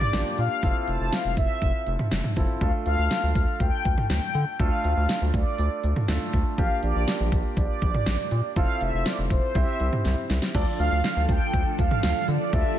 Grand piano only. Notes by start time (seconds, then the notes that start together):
Already playing: A#3 D4 F4 G4
0.14 A#3 D4 F4 G4
0.63 C4 E4 F4 A4
2.37 C4 E4 F4 A4
2.61 A3 D4 F4 A4
4.60 A3 D4 F4 A4
6.09 A3 D4 F4 A4
6.58 A#3 D4 F4 G4
8.56 C4 E4 F4 A4
9.56 C4 E4 G4 C5
10.55 D4 F4 A4 D5
12.53 D4 F4 A4 D5